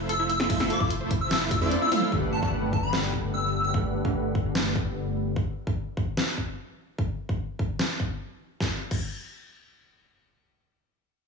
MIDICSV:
0, 0, Header, 1, 7, 480
1, 0, Start_track
1, 0, Key_signature, 1, "major"
1, 0, Tempo, 405405
1, 590, Time_signature, 4, 2, 24, 8
1, 13350, End_track
2, 0, Start_track
2, 0, Title_t, "Digital synth lead"
2, 0, Program_c, 0, 84
2, 108, Note_on_c, 0, 88, 99
2, 341, Note_off_c, 0, 88, 0
2, 348, Note_on_c, 0, 88, 95
2, 711, Note_off_c, 0, 88, 0
2, 830, Note_on_c, 0, 86, 99
2, 1013, Note_off_c, 0, 86, 0
2, 1434, Note_on_c, 0, 88, 89
2, 1508, Note_off_c, 0, 88, 0
2, 1551, Note_on_c, 0, 88, 80
2, 1628, Note_off_c, 0, 88, 0
2, 1790, Note_on_c, 0, 88, 90
2, 1868, Note_off_c, 0, 88, 0
2, 1915, Note_on_c, 0, 88, 75
2, 1989, Note_off_c, 0, 88, 0
2, 2157, Note_on_c, 0, 88, 95
2, 2512, Note_off_c, 0, 88, 0
2, 2753, Note_on_c, 0, 81, 86
2, 2830, Note_off_c, 0, 81, 0
2, 2874, Note_on_c, 0, 81, 77
2, 2948, Note_off_c, 0, 81, 0
2, 3232, Note_on_c, 0, 81, 88
2, 3328, Note_off_c, 0, 81, 0
2, 3353, Note_on_c, 0, 83, 86
2, 3533, Note_off_c, 0, 83, 0
2, 3952, Note_on_c, 0, 88, 93
2, 4288, Note_off_c, 0, 88, 0
2, 4314, Note_on_c, 0, 88, 90
2, 4430, Note_off_c, 0, 88, 0
2, 13350, End_track
3, 0, Start_track
3, 0, Title_t, "Synth arpeggio sound"
3, 0, Program_c, 1, 84
3, 110, Note_on_c, 1, 69, 102
3, 141, Note_off_c, 1, 69, 0
3, 232, Note_on_c, 1, 64, 105
3, 281, Note_off_c, 1, 64, 0
3, 472, Note_on_c, 1, 72, 80
3, 545, Note_off_c, 1, 72, 0
3, 589, Note_on_c, 1, 64, 83
3, 620, Note_off_c, 1, 64, 0
3, 830, Note_on_c, 1, 69, 102
3, 860, Note_off_c, 1, 69, 0
3, 953, Note_on_c, 1, 64, 102
3, 1001, Note_off_c, 1, 64, 0
3, 1193, Note_on_c, 1, 72, 78
3, 1266, Note_off_c, 1, 72, 0
3, 1310, Note_on_c, 1, 64, 82
3, 1340, Note_off_c, 1, 64, 0
3, 1550, Note_on_c, 1, 69, 102
3, 1580, Note_off_c, 1, 69, 0
3, 1674, Note_on_c, 1, 64, 106
3, 1722, Note_off_c, 1, 64, 0
3, 1914, Note_on_c, 1, 76, 75
3, 1942, Note_off_c, 1, 76, 0
3, 2033, Note_on_c, 1, 72, 83
3, 2108, Note_off_c, 1, 72, 0
3, 2155, Note_on_c, 1, 64, 78
3, 2202, Note_off_c, 1, 64, 0
3, 2273, Note_on_c, 1, 72, 80
3, 2302, Note_off_c, 1, 72, 0
3, 2396, Note_on_c, 1, 64, 77
3, 2467, Note_off_c, 1, 64, 0
3, 13350, End_track
4, 0, Start_track
4, 0, Title_t, "Supersaw synth"
4, 0, Program_c, 2, 81
4, 0, Note_on_c, 2, 57, 83
4, 0, Note_on_c, 2, 64, 80
4, 0, Note_on_c, 2, 65, 77
4, 0, Note_on_c, 2, 72, 76
4, 0, Note_on_c, 2, 76, 97
4, 561, Note_off_c, 2, 64, 0
4, 561, Note_off_c, 2, 65, 0
4, 561, Note_off_c, 2, 76, 0
4, 562, Note_off_c, 2, 57, 0
4, 562, Note_off_c, 2, 72, 0
4, 589, Note_on_c, 2, 64, 78
4, 589, Note_on_c, 2, 65, 75
4, 589, Note_on_c, 2, 76, 94
4, 590, Note_on_c, 2, 57, 84
4, 590, Note_on_c, 2, 72, 78
4, 922, Note_off_c, 2, 64, 0
4, 922, Note_off_c, 2, 65, 0
4, 922, Note_off_c, 2, 72, 0
4, 922, Note_off_c, 2, 76, 0
4, 923, Note_off_c, 2, 57, 0
4, 952, Note_on_c, 2, 57, 85
4, 952, Note_on_c, 2, 64, 76
4, 952, Note_on_c, 2, 65, 76
4, 952, Note_on_c, 2, 72, 77
4, 952, Note_on_c, 2, 76, 94
4, 1887, Note_off_c, 2, 57, 0
4, 1887, Note_off_c, 2, 72, 0
4, 1887, Note_off_c, 2, 76, 0
4, 1888, Note_off_c, 2, 64, 0
4, 1888, Note_off_c, 2, 65, 0
4, 1913, Note_on_c, 2, 64, 76
4, 1913, Note_on_c, 2, 65, 76
4, 1913, Note_on_c, 2, 72, 76
4, 1913, Note_on_c, 2, 74, 91
4, 1914, Note_on_c, 2, 57, 85
4, 2242, Note_off_c, 2, 57, 0
4, 2242, Note_off_c, 2, 64, 0
4, 2242, Note_off_c, 2, 65, 0
4, 2242, Note_off_c, 2, 72, 0
4, 2242, Note_off_c, 2, 74, 0
4, 2270, Note_on_c, 2, 57, 92
4, 2270, Note_on_c, 2, 64, 84
4, 2271, Note_on_c, 2, 65, 86
4, 2271, Note_on_c, 2, 72, 84
4, 2271, Note_on_c, 2, 77, 101
4, 2481, Note_off_c, 2, 64, 0
4, 2482, Note_off_c, 2, 57, 0
4, 2482, Note_off_c, 2, 65, 0
4, 2482, Note_off_c, 2, 72, 0
4, 2482, Note_off_c, 2, 77, 0
4, 2510, Note_on_c, 2, 62, 74
4, 2511, Note_on_c, 2, 57, 79
4, 2511, Note_on_c, 2, 67, 74
4, 2511, Note_on_c, 2, 71, 73
4, 2511, Note_on_c, 2, 78, 87
4, 2843, Note_off_c, 2, 57, 0
4, 2843, Note_off_c, 2, 62, 0
4, 2843, Note_off_c, 2, 67, 0
4, 2843, Note_off_c, 2, 71, 0
4, 2843, Note_off_c, 2, 78, 0
4, 2873, Note_on_c, 2, 57, 79
4, 2873, Note_on_c, 2, 62, 72
4, 2873, Note_on_c, 2, 67, 73
4, 2873, Note_on_c, 2, 71, 74
4, 2873, Note_on_c, 2, 78, 90
4, 4402, Note_off_c, 2, 57, 0
4, 4402, Note_off_c, 2, 62, 0
4, 4402, Note_off_c, 2, 67, 0
4, 4402, Note_off_c, 2, 71, 0
4, 4402, Note_off_c, 2, 78, 0
4, 4431, Note_on_c, 2, 57, 79
4, 4431, Note_on_c, 2, 62, 72
4, 4431, Note_on_c, 2, 67, 70
4, 4431, Note_on_c, 2, 71, 71
4, 4431, Note_on_c, 2, 78, 89
4, 4763, Note_off_c, 2, 57, 0
4, 4763, Note_off_c, 2, 62, 0
4, 4763, Note_off_c, 2, 67, 0
4, 4763, Note_off_c, 2, 71, 0
4, 4763, Note_off_c, 2, 78, 0
4, 4793, Note_on_c, 2, 62, 73
4, 4793, Note_on_c, 2, 67, 72
4, 4793, Note_on_c, 2, 78, 86
4, 4794, Note_on_c, 2, 57, 79
4, 4794, Note_on_c, 2, 71, 71
4, 6322, Note_off_c, 2, 57, 0
4, 6322, Note_off_c, 2, 62, 0
4, 6322, Note_off_c, 2, 67, 0
4, 6322, Note_off_c, 2, 71, 0
4, 6322, Note_off_c, 2, 78, 0
4, 13350, End_track
5, 0, Start_track
5, 0, Title_t, "Sub bass"
5, 0, Program_c, 3, 38
5, 0, Note_on_c, 3, 29, 99
5, 566, Note_off_c, 3, 29, 0
5, 589, Note_on_c, 3, 29, 97
5, 927, Note_off_c, 3, 29, 0
5, 952, Note_on_c, 3, 29, 102
5, 1887, Note_off_c, 3, 29, 0
5, 1911, Note_on_c, 3, 41, 99
5, 2029, Note_off_c, 3, 41, 0
5, 2511, Note_on_c, 3, 31, 90
5, 2848, Note_off_c, 3, 31, 0
5, 2873, Note_on_c, 3, 31, 93
5, 4406, Note_off_c, 3, 31, 0
5, 4431, Note_on_c, 3, 31, 92
5, 4768, Note_off_c, 3, 31, 0
5, 4793, Note_on_c, 3, 31, 94
5, 6326, Note_off_c, 3, 31, 0
5, 13350, End_track
6, 0, Start_track
6, 0, Title_t, "Impact"
6, 0, Program_c, 4, 103
6, 2511, Note_on_c, 4, 60, 69
6, 4430, Note_off_c, 4, 60, 0
6, 13350, End_track
7, 0, Start_track
7, 0, Title_t, "Drums"
7, 110, Note_on_c, 9, 42, 77
7, 229, Note_off_c, 9, 42, 0
7, 350, Note_on_c, 9, 42, 68
7, 468, Note_off_c, 9, 42, 0
7, 472, Note_on_c, 9, 40, 85
7, 589, Note_on_c, 9, 36, 119
7, 590, Note_off_c, 9, 40, 0
7, 590, Note_on_c, 9, 42, 81
7, 590, Note_on_c, 9, 49, 49
7, 708, Note_off_c, 9, 36, 0
7, 709, Note_off_c, 9, 42, 0
7, 709, Note_off_c, 9, 49, 0
7, 714, Note_on_c, 9, 40, 65
7, 831, Note_on_c, 9, 42, 72
7, 832, Note_off_c, 9, 40, 0
7, 949, Note_off_c, 9, 42, 0
7, 952, Note_on_c, 9, 36, 105
7, 1070, Note_off_c, 9, 36, 0
7, 1071, Note_on_c, 9, 42, 83
7, 1189, Note_off_c, 9, 42, 0
7, 1310, Note_on_c, 9, 36, 105
7, 1311, Note_on_c, 9, 42, 68
7, 1428, Note_off_c, 9, 36, 0
7, 1429, Note_off_c, 9, 42, 0
7, 1550, Note_on_c, 9, 38, 114
7, 1550, Note_on_c, 9, 42, 81
7, 1550, Note_on_c, 9, 49, 42
7, 1669, Note_off_c, 9, 38, 0
7, 1669, Note_off_c, 9, 42, 0
7, 1669, Note_off_c, 9, 49, 0
7, 1789, Note_on_c, 9, 42, 69
7, 1789, Note_on_c, 9, 48, 64
7, 1790, Note_on_c, 9, 36, 104
7, 1907, Note_off_c, 9, 42, 0
7, 1907, Note_off_c, 9, 48, 0
7, 1908, Note_off_c, 9, 36, 0
7, 1912, Note_on_c, 9, 48, 61
7, 2030, Note_on_c, 9, 42, 81
7, 2030, Note_on_c, 9, 47, 78
7, 2031, Note_off_c, 9, 48, 0
7, 2148, Note_off_c, 9, 42, 0
7, 2148, Note_off_c, 9, 47, 0
7, 2152, Note_on_c, 9, 47, 75
7, 2271, Note_off_c, 9, 47, 0
7, 2271, Note_on_c, 9, 42, 70
7, 2271, Note_on_c, 9, 45, 101
7, 2389, Note_off_c, 9, 42, 0
7, 2389, Note_off_c, 9, 45, 0
7, 2394, Note_on_c, 9, 45, 87
7, 2511, Note_on_c, 9, 36, 111
7, 2512, Note_off_c, 9, 45, 0
7, 2629, Note_off_c, 9, 36, 0
7, 2874, Note_on_c, 9, 36, 99
7, 2992, Note_off_c, 9, 36, 0
7, 3231, Note_on_c, 9, 36, 96
7, 3350, Note_off_c, 9, 36, 0
7, 3469, Note_on_c, 9, 38, 112
7, 3588, Note_off_c, 9, 38, 0
7, 3711, Note_on_c, 9, 36, 55
7, 3830, Note_off_c, 9, 36, 0
7, 4431, Note_on_c, 9, 36, 117
7, 4549, Note_off_c, 9, 36, 0
7, 4793, Note_on_c, 9, 36, 99
7, 4912, Note_off_c, 9, 36, 0
7, 5151, Note_on_c, 9, 36, 100
7, 5269, Note_off_c, 9, 36, 0
7, 5390, Note_on_c, 9, 38, 115
7, 5508, Note_off_c, 9, 38, 0
7, 5631, Note_on_c, 9, 36, 103
7, 5749, Note_off_c, 9, 36, 0
7, 6351, Note_on_c, 9, 36, 114
7, 6469, Note_off_c, 9, 36, 0
7, 6713, Note_on_c, 9, 36, 103
7, 6832, Note_off_c, 9, 36, 0
7, 7071, Note_on_c, 9, 36, 102
7, 7189, Note_off_c, 9, 36, 0
7, 7310, Note_on_c, 9, 38, 117
7, 7428, Note_off_c, 9, 38, 0
7, 7551, Note_on_c, 9, 36, 57
7, 7669, Note_off_c, 9, 36, 0
7, 8270, Note_on_c, 9, 36, 114
7, 8389, Note_off_c, 9, 36, 0
7, 8633, Note_on_c, 9, 36, 98
7, 8751, Note_off_c, 9, 36, 0
7, 8990, Note_on_c, 9, 36, 99
7, 9108, Note_off_c, 9, 36, 0
7, 9228, Note_on_c, 9, 38, 110
7, 9347, Note_off_c, 9, 38, 0
7, 9470, Note_on_c, 9, 36, 101
7, 9588, Note_off_c, 9, 36, 0
7, 10188, Note_on_c, 9, 38, 76
7, 10189, Note_on_c, 9, 36, 100
7, 10306, Note_off_c, 9, 38, 0
7, 10308, Note_off_c, 9, 36, 0
7, 10550, Note_on_c, 9, 57, 75
7, 10552, Note_on_c, 9, 36, 99
7, 10669, Note_off_c, 9, 57, 0
7, 10670, Note_off_c, 9, 36, 0
7, 13350, End_track
0, 0, End_of_file